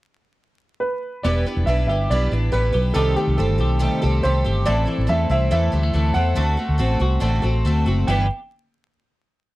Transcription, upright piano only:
0, 0, Header, 1, 2, 480
1, 0, Start_track
1, 0, Key_signature, 1, "major"
1, 0, Tempo, 427350
1, 1403, Time_signature, 4, 2, 24, 8
1, 10731, End_track
2, 0, Start_track
2, 0, Title_t, "Upright piano"
2, 0, Program_c, 0, 0
2, 899, Note_on_c, 0, 71, 69
2, 1386, Note_on_c, 0, 74, 72
2, 1406, Note_off_c, 0, 71, 0
2, 1841, Note_off_c, 0, 74, 0
2, 1864, Note_on_c, 0, 76, 70
2, 2083, Note_off_c, 0, 76, 0
2, 2100, Note_on_c, 0, 76, 72
2, 2334, Note_off_c, 0, 76, 0
2, 2359, Note_on_c, 0, 74, 77
2, 2833, Note_on_c, 0, 71, 75
2, 2856, Note_off_c, 0, 74, 0
2, 3299, Note_on_c, 0, 69, 81
2, 3333, Note_off_c, 0, 71, 0
2, 3534, Note_off_c, 0, 69, 0
2, 3551, Note_on_c, 0, 67, 72
2, 3792, Note_on_c, 0, 69, 71
2, 3804, Note_off_c, 0, 67, 0
2, 4752, Note_on_c, 0, 72, 80
2, 4786, Note_off_c, 0, 69, 0
2, 5232, Note_on_c, 0, 74, 92
2, 5252, Note_off_c, 0, 72, 0
2, 5717, Note_on_c, 0, 76, 83
2, 5731, Note_off_c, 0, 74, 0
2, 5944, Note_off_c, 0, 76, 0
2, 5961, Note_on_c, 0, 76, 87
2, 6179, Note_off_c, 0, 76, 0
2, 6196, Note_on_c, 0, 76, 86
2, 6895, Note_on_c, 0, 78, 85
2, 6939, Note_off_c, 0, 76, 0
2, 8541, Note_off_c, 0, 78, 0
2, 9068, Note_on_c, 0, 79, 76
2, 9295, Note_off_c, 0, 79, 0
2, 10731, End_track
0, 0, End_of_file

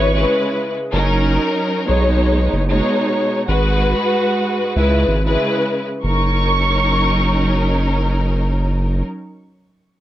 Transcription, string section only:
0, 0, Header, 1, 2, 480
1, 0, Start_track
1, 0, Key_signature, 6, "major"
1, 0, Tempo, 638298
1, 699, Time_signature, 4, 2, 24, 8
1, 7522, End_track
2, 0, Start_track
2, 0, Title_t, "String section"
2, 0, Program_c, 0, 48
2, 0, Note_on_c, 0, 49, 92
2, 0, Note_on_c, 0, 56, 85
2, 0, Note_on_c, 0, 64, 85
2, 0, Note_on_c, 0, 71, 111
2, 82, Note_off_c, 0, 49, 0
2, 83, Note_off_c, 0, 56, 0
2, 84, Note_off_c, 0, 64, 0
2, 84, Note_off_c, 0, 71, 0
2, 111, Note_on_c, 0, 49, 96
2, 112, Note_on_c, 0, 56, 95
2, 113, Note_on_c, 0, 64, 83
2, 115, Note_on_c, 0, 71, 112
2, 549, Note_off_c, 0, 49, 0
2, 550, Note_off_c, 0, 56, 0
2, 550, Note_off_c, 0, 64, 0
2, 551, Note_off_c, 0, 71, 0
2, 697, Note_on_c, 0, 54, 96
2, 698, Note_on_c, 0, 61, 90
2, 701, Note_on_c, 0, 63, 94
2, 702, Note_on_c, 0, 70, 112
2, 1399, Note_off_c, 0, 63, 0
2, 1404, Note_on_c, 0, 47, 95
2, 1407, Note_on_c, 0, 56, 88
2, 1408, Note_on_c, 0, 63, 90
2, 1410, Note_on_c, 0, 73, 101
2, 1418, Note_off_c, 0, 54, 0
2, 1419, Note_off_c, 0, 61, 0
2, 1420, Note_off_c, 0, 70, 0
2, 1973, Note_off_c, 0, 47, 0
2, 1974, Note_off_c, 0, 56, 0
2, 1975, Note_off_c, 0, 63, 0
2, 1976, Note_off_c, 0, 73, 0
2, 2025, Note_on_c, 0, 47, 95
2, 2025, Note_on_c, 0, 56, 89
2, 2028, Note_on_c, 0, 63, 91
2, 2029, Note_on_c, 0, 73, 103
2, 2572, Note_off_c, 0, 47, 0
2, 2573, Note_off_c, 0, 56, 0
2, 2574, Note_off_c, 0, 63, 0
2, 2574, Note_off_c, 0, 73, 0
2, 2619, Note_on_c, 0, 44, 94
2, 2620, Note_on_c, 0, 56, 85
2, 2621, Note_on_c, 0, 66, 90
2, 2622, Note_on_c, 0, 71, 109
2, 3573, Note_off_c, 0, 56, 0
2, 3575, Note_off_c, 0, 71, 0
2, 3579, Note_off_c, 0, 44, 0
2, 3579, Note_on_c, 0, 49, 90
2, 3580, Note_off_c, 0, 66, 0
2, 3582, Note_on_c, 0, 56, 80
2, 3583, Note_on_c, 0, 64, 81
2, 3584, Note_on_c, 0, 71, 106
2, 3922, Note_off_c, 0, 49, 0
2, 3924, Note_off_c, 0, 56, 0
2, 3924, Note_off_c, 0, 64, 0
2, 3925, Note_off_c, 0, 71, 0
2, 3951, Note_on_c, 0, 49, 92
2, 3953, Note_on_c, 0, 56, 88
2, 3955, Note_on_c, 0, 64, 83
2, 3956, Note_on_c, 0, 71, 108
2, 4389, Note_off_c, 0, 49, 0
2, 4390, Note_off_c, 0, 56, 0
2, 4391, Note_off_c, 0, 64, 0
2, 4392, Note_off_c, 0, 71, 0
2, 4533, Note_on_c, 0, 54, 89
2, 4535, Note_on_c, 0, 61, 82
2, 4539, Note_on_c, 0, 63, 81
2, 4541, Note_on_c, 0, 70, 99
2, 6783, Note_off_c, 0, 54, 0
2, 6785, Note_off_c, 0, 61, 0
2, 6788, Note_off_c, 0, 63, 0
2, 6790, Note_off_c, 0, 70, 0
2, 7522, End_track
0, 0, End_of_file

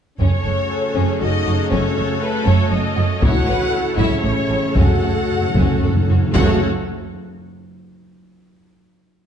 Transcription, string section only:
0, 0, Header, 1, 2, 480
1, 0, Start_track
1, 0, Tempo, 504202
1, 194, Time_signature, 3, 2, 24, 8
1, 4033, Tempo, 530035
1, 8585, End_track
2, 0, Start_track
2, 0, Title_t, "String section"
2, 0, Program_c, 0, 48
2, 203, Note_on_c, 0, 61, 48
2, 207, Note_on_c, 0, 69, 53
2, 214, Note_on_c, 0, 66, 49
2, 214, Note_on_c, 0, 73, 51
2, 3041, Note_off_c, 0, 66, 0
2, 3055, Note_on_c, 0, 64, 64
2, 4503, Note_off_c, 0, 64, 0
2, 4504, Note_on_c, 0, 66, 54
2, 5919, Note_off_c, 0, 61, 0
2, 5921, Note_off_c, 0, 69, 0
2, 5924, Note_off_c, 0, 73, 0
2, 5948, Note_off_c, 0, 66, 0
2, 5954, Note_on_c, 0, 73, 80
2, 5956, Note_on_c, 0, 61, 79
2, 5959, Note_on_c, 0, 66, 81
2, 5960, Note_on_c, 0, 69, 83
2, 6221, Note_off_c, 0, 73, 0
2, 6222, Note_off_c, 0, 61, 0
2, 6224, Note_off_c, 0, 66, 0
2, 6224, Note_off_c, 0, 69, 0
2, 8585, End_track
0, 0, End_of_file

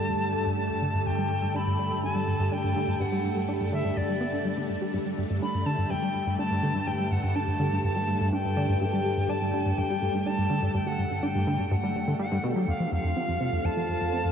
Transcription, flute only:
0, 0, Header, 1, 2, 480
1, 0, Start_track
1, 0, Tempo, 483871
1, 1058, Time_signature, 4, 2, 24, 8
1, 14204, End_track
2, 0, Start_track
2, 0, Title_t, "Flute"
2, 0, Program_c, 0, 73
2, 0, Note_on_c, 0, 81, 106
2, 536, Note_off_c, 0, 81, 0
2, 580, Note_on_c, 0, 81, 97
2, 1056, Note_on_c, 0, 79, 100
2, 1071, Note_off_c, 0, 81, 0
2, 1544, Note_on_c, 0, 83, 102
2, 1559, Note_off_c, 0, 79, 0
2, 2021, Note_off_c, 0, 83, 0
2, 2025, Note_on_c, 0, 81, 100
2, 2507, Note_on_c, 0, 79, 96
2, 2521, Note_off_c, 0, 81, 0
2, 2986, Note_on_c, 0, 78, 87
2, 3001, Note_off_c, 0, 79, 0
2, 3434, Note_off_c, 0, 78, 0
2, 3699, Note_on_c, 0, 76, 98
2, 3938, Note_on_c, 0, 74, 97
2, 3953, Note_off_c, 0, 76, 0
2, 4658, Note_off_c, 0, 74, 0
2, 5380, Note_on_c, 0, 83, 101
2, 5612, Note_on_c, 0, 81, 96
2, 5627, Note_off_c, 0, 83, 0
2, 5853, Note_on_c, 0, 79, 95
2, 5868, Note_off_c, 0, 81, 0
2, 6328, Note_off_c, 0, 79, 0
2, 6334, Note_on_c, 0, 81, 99
2, 6814, Note_on_c, 0, 79, 93
2, 6829, Note_off_c, 0, 81, 0
2, 7059, Note_on_c, 0, 78, 84
2, 7074, Note_off_c, 0, 79, 0
2, 7296, Note_on_c, 0, 81, 94
2, 7311, Note_off_c, 0, 78, 0
2, 7772, Note_off_c, 0, 81, 0
2, 7778, Note_on_c, 0, 81, 97
2, 8225, Note_off_c, 0, 81, 0
2, 8262, Note_on_c, 0, 79, 91
2, 8706, Note_off_c, 0, 79, 0
2, 8739, Note_on_c, 0, 79, 95
2, 9218, Note_on_c, 0, 81, 96
2, 9233, Note_off_c, 0, 79, 0
2, 9700, Note_on_c, 0, 79, 91
2, 9715, Note_off_c, 0, 81, 0
2, 10185, Note_on_c, 0, 81, 92
2, 10199, Note_off_c, 0, 79, 0
2, 10659, Note_off_c, 0, 81, 0
2, 10665, Note_on_c, 0, 79, 89
2, 10783, Note_on_c, 0, 78, 86
2, 10797, Note_off_c, 0, 79, 0
2, 11143, Note_on_c, 0, 79, 86
2, 11158, Note_off_c, 0, 78, 0
2, 11623, Note_on_c, 0, 78, 86
2, 11638, Note_off_c, 0, 79, 0
2, 12093, Note_off_c, 0, 78, 0
2, 12099, Note_on_c, 0, 78, 85
2, 12365, Note_off_c, 0, 78, 0
2, 12582, Note_on_c, 0, 77, 86
2, 12803, Note_off_c, 0, 77, 0
2, 12826, Note_on_c, 0, 77, 92
2, 13540, Note_on_c, 0, 81, 106
2, 13555, Note_off_c, 0, 77, 0
2, 14204, Note_off_c, 0, 81, 0
2, 14204, End_track
0, 0, End_of_file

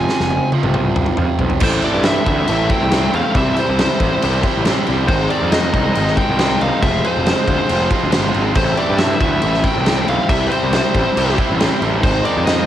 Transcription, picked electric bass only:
0, 0, Header, 1, 2, 480
1, 0, Start_track
1, 0, Key_signature, 0, "minor"
1, 0, Tempo, 434153
1, 1789, Time_signature, 4, 2, 24, 8
1, 13999, End_track
2, 0, Start_track
2, 0, Title_t, "Picked electric bass"
2, 0, Program_c, 0, 34
2, 225, Note_on_c, 0, 29, 94
2, 422, Note_off_c, 0, 29, 0
2, 709, Note_on_c, 0, 36, 89
2, 1198, Note_off_c, 0, 36, 0
2, 1303, Note_on_c, 0, 41, 97
2, 1403, Note_off_c, 0, 41, 0
2, 1551, Note_on_c, 0, 35, 89
2, 1648, Note_off_c, 0, 35, 0
2, 1785, Note_on_c, 0, 33, 102
2, 1982, Note_off_c, 0, 33, 0
2, 2148, Note_on_c, 0, 43, 101
2, 2441, Note_off_c, 0, 43, 0
2, 2511, Note_on_c, 0, 38, 78
2, 2706, Note_off_c, 0, 38, 0
2, 2755, Note_on_c, 0, 33, 111
2, 2948, Note_off_c, 0, 33, 0
2, 3113, Note_on_c, 0, 36, 97
2, 3404, Note_off_c, 0, 36, 0
2, 3470, Note_on_c, 0, 40, 94
2, 3567, Note_off_c, 0, 40, 0
2, 3704, Note_on_c, 0, 36, 112
2, 3901, Note_off_c, 0, 36, 0
2, 4079, Note_on_c, 0, 36, 94
2, 4270, Note_off_c, 0, 36, 0
2, 4428, Note_on_c, 0, 33, 96
2, 4526, Note_off_c, 0, 33, 0
2, 4681, Note_on_c, 0, 36, 111
2, 4871, Note_off_c, 0, 36, 0
2, 5038, Note_on_c, 0, 33, 85
2, 5229, Note_off_c, 0, 33, 0
2, 5402, Note_on_c, 0, 36, 96
2, 5591, Note_off_c, 0, 36, 0
2, 5625, Note_on_c, 0, 32, 105
2, 5821, Note_off_c, 0, 32, 0
2, 6000, Note_on_c, 0, 41, 93
2, 6288, Note_off_c, 0, 41, 0
2, 6347, Note_on_c, 0, 36, 80
2, 6542, Note_off_c, 0, 36, 0
2, 6603, Note_on_c, 0, 32, 108
2, 6792, Note_off_c, 0, 32, 0
2, 6957, Note_on_c, 0, 36, 95
2, 7246, Note_off_c, 0, 36, 0
2, 7313, Note_on_c, 0, 36, 93
2, 7408, Note_off_c, 0, 36, 0
2, 7548, Note_on_c, 0, 29, 114
2, 7743, Note_off_c, 0, 29, 0
2, 7925, Note_on_c, 0, 29, 82
2, 8113, Note_off_c, 0, 29, 0
2, 8269, Note_on_c, 0, 38, 94
2, 8366, Note_off_c, 0, 38, 0
2, 8515, Note_on_c, 0, 29, 111
2, 8707, Note_off_c, 0, 29, 0
2, 8884, Note_on_c, 0, 38, 88
2, 8974, Note_off_c, 0, 38, 0
2, 8997, Note_on_c, 0, 31, 82
2, 9208, Note_off_c, 0, 31, 0
2, 9233, Note_on_c, 0, 32, 85
2, 9445, Note_off_c, 0, 32, 0
2, 9467, Note_on_c, 0, 33, 99
2, 9662, Note_off_c, 0, 33, 0
2, 9831, Note_on_c, 0, 43, 106
2, 10121, Note_off_c, 0, 43, 0
2, 10178, Note_on_c, 0, 38, 90
2, 10376, Note_off_c, 0, 38, 0
2, 10435, Note_on_c, 0, 33, 108
2, 10626, Note_off_c, 0, 33, 0
2, 10794, Note_on_c, 0, 36, 92
2, 11083, Note_off_c, 0, 36, 0
2, 11153, Note_on_c, 0, 35, 96
2, 11248, Note_off_c, 0, 35, 0
2, 11377, Note_on_c, 0, 36, 101
2, 11576, Note_off_c, 0, 36, 0
2, 11754, Note_on_c, 0, 36, 88
2, 11946, Note_off_c, 0, 36, 0
2, 12104, Note_on_c, 0, 33, 108
2, 12202, Note_off_c, 0, 33, 0
2, 12353, Note_on_c, 0, 36, 116
2, 12546, Note_off_c, 0, 36, 0
2, 12715, Note_on_c, 0, 33, 80
2, 12907, Note_off_c, 0, 33, 0
2, 13065, Note_on_c, 0, 33, 91
2, 13261, Note_off_c, 0, 33, 0
2, 13310, Note_on_c, 0, 32, 106
2, 13505, Note_off_c, 0, 32, 0
2, 13674, Note_on_c, 0, 41, 94
2, 13965, Note_off_c, 0, 41, 0
2, 13999, End_track
0, 0, End_of_file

